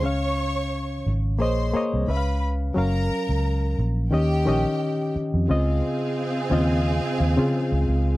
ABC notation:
X:1
M:4/4
L:1/16
Q:"Swing 16ths" 1/4=88
K:Dblyd
V:1 name="String section"
[dd']6 z2 [cc']2 z2 [_c_c']2 z2 | [Bb]6 z2 [Gg]6 z2 | [CAf]16 |]
V:2 name="Reed electric piano"
[D,Ddf]4- [D,Ddf] z3 [B,Acde]2 [B,Acde]2 [D,D_c_f=f]3 z | [_G,DBf]4- [G,DBf] z3 [E,D=Ge]2 [E,DGe]4 z2 | [D,CFe]4 z2 [D,CFe]3 z2 [D,CFA]3 z2 |]
V:3 name="Fingered electric bass" clef=bass
D,,6 A,,,2 B,,,2 z C,, D,,4 | _G,,,2 z D,,3 B,,,2 E,,2 B,,, z4 F,, | D,,2 z4 E,,3 z E,, D, z D,, D,,2 |]